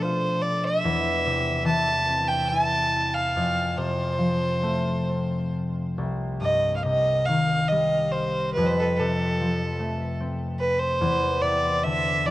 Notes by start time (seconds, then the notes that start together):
Already playing: B2 F3 A3 D4
0.02 F4 C5
0.42 D5
0.65 E5
0.84 E2
1.26 C3
1.65 E3 A5
2.08 C4
2.28 G5
2.48 E4 A5
3.14 F5
3.36 F2
3.77 C3 C5
4.18 F3
4.62 A3
5.09 C4
5.98 C2
6.41 G2 D#5
6.77 F5
6.83 C3 D#5
7.25 D#3 F5
7.68 G3 D#5
8.12 C5
8.53 F2 B4
8.65 B4 C5
8.79 A4 B4
8.97 C3 A4
9.41 F3
9.79 A3
10.20 C4
10.60 B4
10.80 C5
11.01 E2
11.42 C3 D5
11.84 D3 E5
12.26 E3 D5